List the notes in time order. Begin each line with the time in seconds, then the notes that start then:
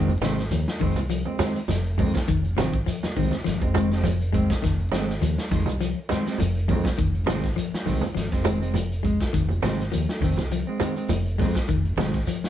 Already playing: F1 D#3 G#3 C4
0.08 closed hi-hat, high conga
0.21 G#1 C3 D#3 G#3 C4, snare, closed hi-hat, high conga
0.38 snare, closed hi-hat, shekere
0.51 D#2 F3, closed hi-hat, shekere
0.68 snare
0.80 F1 D#3 G#3 C4, kick, open hi-hat, low conga, shekere
0.96 C2, closed hi-hat, high conga, shekere
1.10 F3, closed hi-hat, shekere
1.25 G#3 C4, high conga
1.39 D#3 G#3 C4, snare, closed hi-hat, high conga, shekere
1.55 closed hi-hat, shekere
1.68 F1 F3, snare, closed hi-hat, high conga, shekere
1.85 closed hi-hat
1.98 F2 D#3 G#3 C4, kick, open hi-hat, low conga, shekere
2.14 kick, snare, high conga, shekere
2.28 F1 D#3, kick, closed hi-hat, shekere
2.44 closed hi-hat
2.57 G#1 C3 D#3 C4, snare, closed hi-hat, high conga, low conga
2.74 kick, closed hi-hat, shekere
2.86 F3, closed hi-hat, shekere
3.03 muted fingered electric bass stroke, snare, closed hi-hat, high conga
3.16 C2 D#3 G#3 C4, kick, open hi-hat, low conga, shekere
3.31 snare, closed hi-hat, high conga, shekere
3.44 G#1 F3, snare, closed hi-hat, shekere
3.60 F1 G#3 C4, kick, closed hi-hat, high conga
3.74 D#3 G#3 C4, closed hi-hat, high conga, shekere
3.91 G#3 C4, snare, closed hi-hat, shekere
4.03 F3, closed hi-hat, high conga, low conga, shekere
4.21 closed hi-hat
4.32 D#3 G#3 C4, kick, closed hi-hat, low conga, shekere
4.50 kick, snare, closed hi-hat, high conga, shekere
4.62 F1 D#3, kick, snare, closed hi-hat, shekere
4.80 closed hi-hat
4.92 G#1 G#3 C4, snare, closed hi-hat, high conga
5.09 snare, closed hi-hat, shekere
5.21 D#2 F3, closed hi-hat, shekere
5.38 snare
5.51 F1 D#3 G#3, muted clean electric guitar stroke, kick, snare, open hi-hat, low conga, shekere
5.66 C2, closed hi-hat, high conga, shekere
5.81 F3, closed hi-hat, shekere
6.09 D#3 G#3 C4, snare, closed hi-hat, high conga, shekere
6.26 G#3 C4, snare, closed hi-hat, shekere
6.38 F1 F3, closed hi-hat, high conga, shekere
6.55 closed hi-hat
6.68 F2 D#3 G#3 C4, kick, open hi-hat, low conga, shekere
6.84 kick, snare, high conga, shekere
6.98 F1 D#3, kick, closed hi-hat, shekere
7.14 closed hi-hat
7.26 G#1 C3 D#3 G#3 C4, snare, closed hi-hat, high conga
7.44 kick, snare, closed hi-hat, shekere
7.56 F3, closed hi-hat, shekere
7.72 muted fingered electric bass stroke, snare, closed hi-hat
7.86 C2 D#3 G#3 C4, kick, snare, open hi-hat, low conga, shekere
8.01 closed hi-hat, high conga, shekere
8.15 G#1 F3, snare, closed hi-hat, shekere
8.32 F1 G#3 C4, kick, snare, closed hi-hat
8.44 D#3 G#3 C4, closed hi-hat, high conga, shekere
8.61 G#3 C4, closed hi-hat, shekere
8.74 F3, closed hi-hat, high conga, shekere
8.92 closed hi-hat
9.03 G#3, kick, closed hi-hat, low conga, shekere
9.20 kick, snare, closed hi-hat, shekere
9.33 F1 D#3, kick, closed hi-hat, shekere
9.49 closed hi-hat, high conga
9.62 G#1 C3 D#3 G#3 C4, snare, closed hi-hat, high conga, low conga
9.79 snare, closed hi-hat, shekere
9.91 D#2 F3, closed hi-hat, shekere
10.09 snare
10.21 F1 D#3 C4, kick, snare, open hi-hat, low conga, shekere
10.36 C2, snare, closed hi-hat, high conga, shekere
10.51 F3, closed hi-hat, shekere
10.67 G#3 C4
10.80 D#3 G#3 C4, closed hi-hat, high conga, shekere
10.96 G#3 C4, closed hi-hat, shekere
11.09 F1 F3, closed hi-hat, high conga, shekere
11.26 closed hi-hat
11.38 F2 G#3 C4, kick, snare, open hi-hat, low conga, shekere
11.54 kick, snare, shekere
11.68 F1 D#3, kick, closed hi-hat, shekere
11.85 closed hi-hat
11.97 G#1 C3 D#3 G#3 C4, snare, closed hi-hat, high conga, low conga
12.13 kick, snare, closed hi-hat, shekere
12.27 F3, closed hi-hat, shekere
12.42 muted fingered electric bass stroke, snare, closed hi-hat